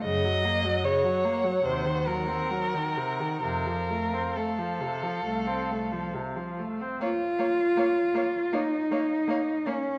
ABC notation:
X:1
M:4/4
L:1/16
Q:1/4=73
K:Bbm
V:1 name="Violin"
g16 | f12- f3 z | f2 f2 f2 f2 f2 f2 f2 f2 |]
V:2 name="Violin"
e4 d4 c2 B6 | B4 =A8 z4 | d2 d2 d2 d2 d2 d2 d2 d2 |]
V:3 name="Viola" clef=bass
D, G, B, G, D, G, B, G, C, E, G, C G, E, C, E, | C, F, =A, C A, F, C, F, A, C A, F, C, F, A, C | B,2 B,2 B,2 B,2 B,2 B,2 B,2 B,2 |]
V:4 name="Cello" clef=bass
G,,4 z4 E,,4 z4 | F,,4 z4 C,,4 z4 | F8 E6 D2 |]